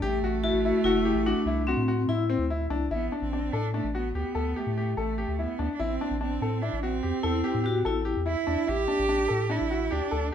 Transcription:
0.02 sub bass A1, cello A3, grand piano G4
0.22 sub bass A1, grand piano F#4
0.44 grand piano E4, vibraphone F#4
0.53 sub bass A1
0.65 grand piano E4
0.84 sub bass F#1, vibraphone E4, grand piano F#4
1.05 grand piano G4
1.15 sub bass A1
1.26 vibraphone D4, grand piano F#4
1.46 sub bass C2, grand piano E4
1.67 vibraphone C4, grand piano F#4
1.77 sub bass A2
1.88 grand piano F#4
2.08 sub bass A2, grand piano E4, vibraphone E4
2.30 grand piano C4
2.39 sub bass D2
2.50 grand piano E4
2.70 sub bass C2, grand piano D4
2.91 sub bass A1, cello B3, grand piano E4
3.12 grand piano D4
3.22 sub bass A1, cello C4
3.33 grand piano D4
3.53 sub bass A2, cello D4, grand piano A4
3.74 cello A3, grand piano D4
3.84 sub bass A1
3.95 cello B3, grand piano F#4
4.15 sub bass D2, cello B3, grand piano G4
4.35 sub bass D2, grand piano A4
4.56 cello A3, grand piano G4
4.67 sub bass A2
4.78 grand piano G4
4.97 sub bass A1, cello A3, grand piano A4
5.18 grand piano G4
5.28 sub bass D2
5.39 cello B3, grand piano E4
5.59 sub bass D2, grand piano D4
5.74 cello D4
5.79 sub bass A1, cello C4, grand piano E4
6.01 grand piano D4
6.11 sub bass A1
6.21 cello C4, grand piano D4
6.41 sub bass A2, grand piano A4
6.62 cello D4, grand piano E4
6.73 sub bass A1
6.83 cello C4, grand piano F#4
7.03 sub bass E2, grand piano G4
7.23 sub bass E2, vibraphone E4, grand piano A4
7.44 grand piano G4
7.54 sub bass A2
7.64 vibraphone F#4, grand piano G4
7.85 sub bass A1, vibraphone E4, grand piano A4
8.05 grand piano G4
8.17 sub bass E2
8.26 grand piano E4, cello E4
8.47 sub bass E2, grand piano D4
8.67 sub bass A1, grand piano E4, cello G4
8.88 grand piano D4
8.99 sub bass A1
9.09 grand piano D4
9.28 sub bass A2, grand piano A4
9.50 grand piano D4, cello E4
9.61 sub bass A1
9.71 grand piano F#4
9.91 sub bass D2, cello D4, grand piano G4
10.11 sub bass D2, grand piano A4

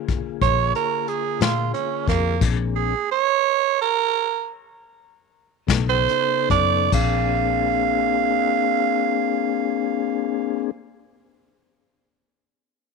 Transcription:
Already playing: tonewheel organ D3 A#3 F4 G#4
0.08 kick, closed hi-hat
0.41 fingered electric bass A#1, tenor saxophone C#5, kick, closed hi-hat
0.75 tenor saxophone A#4, closed hi-hat
1.08 tenor saxophone G#4, closed hi-hat
1.41 fingered electric bass A#2, tenor saxophone F4, snare, closed hi-hat
1.74 tenor saxophone C#4, closed hi-hat
2.08 fingered electric bass F2, tenor saxophone A#3, kick, snare, closed hi-hat
2.40 fingered electric bass A#1, tonewheel organ A#3 C4 D4 G#4, kick, closed hi-hat, crash
2.76 tenor saxophone G#4
3.11 tenor saxophone C#5
3.81 tenor saxophone A#4
5.67 fingered electric bass B1, tonewheel organ C#3 B3 D#4 A4, kick, snare, closed hi-hat
5.89 tenor saxophone C5
6.09 closed hi-hat
6.50 fingered electric bass F#2, tenor saxophone D5, kick, closed hi-hat
6.92 fingered electric bass A#1, tonewheel organ A#3 C4 D4 G#4, tenor saxophone F5, kick, crash

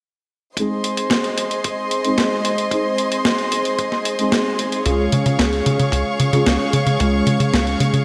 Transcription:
0.57 analog polysynth G#3 C4 D#4 G#4, string section G#4 C5 D#5 C6, kick, closed hi-hat
0.84 closed hi-hat
0.97 closed hi-hat
1.10 kick, snare, closed hi-hat
1.24 closed hi-hat
1.38 closed hi-hat
1.51 closed hi-hat
1.64 kick, closed hi-hat
1.91 closed hi-hat
2.04 analog polysynth G#3 C4 D#4 G#4, closed hi-hat
2.18 kick, snare, closed hi-hat
2.45 closed hi-hat
2.58 closed hi-hat
2.71 analog polysynth G#3 C4 D#4 G#4, kick, closed hi-hat
2.98 closed hi-hat
3.12 closed hi-hat
3.25 kick, snare, closed hi-hat
3.38 closed hi-hat
3.52 closed hi-hat
3.65 closed hi-hat
3.79 kick, closed hi-hat
3.92 snare
4.05 closed hi-hat
4.19 analog polysynth G#3 C4 D#4 G#4, closed hi-hat
4.32 kick, snare, closed hi-hat
4.59 closed hi-hat
4.72 closed hi-hat
4.86 analog synth bass C#2, analog polysynth G#3 C#4 F4 G#4, string section C#5 F5 C#6, kick, closed hi-hat
5.12 analog synth bass C#3, closed hi-hat
5.26 analog synth bass C#3, closed hi-hat
5.39 analog synth bass C#2, kick, snare, closed hi-hat
5.53 closed hi-hat
5.66 analog synth bass C#3, closed hi-hat
5.80 analog synth bass C#3, closed hi-hat
5.92 analog synth bass C#2, kick, closed hi-hat
6.20 analog synth bass C#3, closed hi-hat
6.33 analog synth bass C#3, analog polysynth G#3 C#4 F4 G#4, closed hi-hat
6.46 analog synth bass C#2, kick, snare, closed hi-hat
6.73 analog synth bass C#3, closed hi-hat
6.87 analog synth bass C#3, closed hi-hat
7.00 analog synth bass C#2, analog polysynth G#3 C#4 F4 G#4, kick, closed hi-hat
7.27 analog synth bass C#3, closed hi-hat
7.40 analog synth bass C#3, closed hi-hat
7.54 analog synth bass C#2, kick, snare, closed hi-hat
7.67 closed hi-hat
7.80 analog synth bass C#3, closed hi-hat
7.94 analog synth bass C#3, closed hi-hat

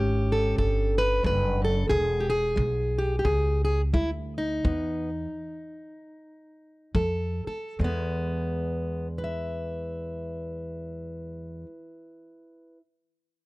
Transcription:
Already playing: upright bass G#1, steel-string acoustic guitar A3 C#4 G4
0.32 steel-string acoustic guitar A4
0.56 upright bass G1, steel-string acoustic guitar E2 A4, kick
0.98 steel-string acoustic guitar B4
1.23 upright bass F#1, steel-string acoustic guitar G2 B4, kick
1.62 steel-string acoustic guitar F#2 A4
1.88 upright bass E1, steel-string acoustic guitar E2 G#4, kick
2.20 steel-string acoustic guitar G4
2.30 steel-string acoustic guitar G#4
2.56 upright bass B1, steel-string acoustic guitar G#3, kick
2.98 steel-string acoustic guitar G4
3.19 steel-string acoustic guitar G4
3.25 upright bass C#2, steel-string acoustic guitar E2 G#4, kick
3.65 steel-string acoustic guitar G#4
3.93 upright bass D2, steel-string acoustic guitar G#3 E4, kick
4.38 steel-string acoustic guitar D#4
4.64 steel-string acoustic guitar E2 B3, upright bass E2, kick
6.95 upright bass F2, steel-string acoustic guitar F3 A4, kick
7.46 steel-string acoustic guitar A4, muted upright bass stroke
7.79 steel-string acoustic guitar E2 G#3, upright bass E2
7.84 steel-string acoustic guitar B3
9.18 steel-string acoustic guitar B4
9.24 steel-string acoustic guitar E5

